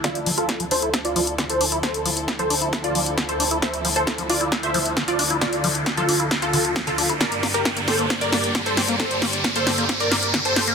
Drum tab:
HH |xxoxxxoxxxoxxxox|xxoxxxoxxxoxxxox|xxoxxxoxxxoxxxox|xxoxxxoxxxoxxxox|
SD |o---o---o---o---|o---o---o---o---|o---o---o---o---|o---o---o---o---|
BD |o---o---o---o---|o---o---o---o---|o---o---o---o---|o---o---o---o---|

HH |xxoxxxoxxxoxxxox|xxoxxxoxxxoxxxox|
SD |o-o-o-o-o-o-o-o-|o-o-o-o-o-o-o-o-|
BD |o---o---o---o---|o---o---o---o---|